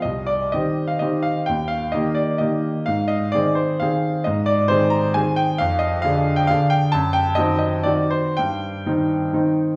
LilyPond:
\new Staff \with { instrumentName = "Grand piano" } { \time 3/4 \key c \minor \tempo 4 = 130 << { ees''8 d''8 ees''8. f''16 ees''8 f''8 | g''8 f''8 ees''8 d''8 ees''4 | f''8 ees''8 d''8 c''8 f''4 | ees''8 d''8 c''8 bes''8 aes''8 g''8 |
f''8 ees''8 f''8. g''16 f''8 g''8 | a''8 g''8 dis''8 dis''8 d''8 c''8 | g''2. | } \\ { c,4 <ees c' g'>4 <ees c' g'>4 | ees,4 <ees bes g'>4 <ees bes g'>4 | aes,4 <ees c' aes'>4 <ees c' aes'>4 | aes,4 <ees c' aes'>4 <ees c' aes'>4 |
f,4 <d d' aes'>4 <d d' aes'>4 | fis,4 <dis c' fis'>4 <dis c' fis'>4 | g,4 <ees c' ees'>4 <ees c' ees'>4 | } >> }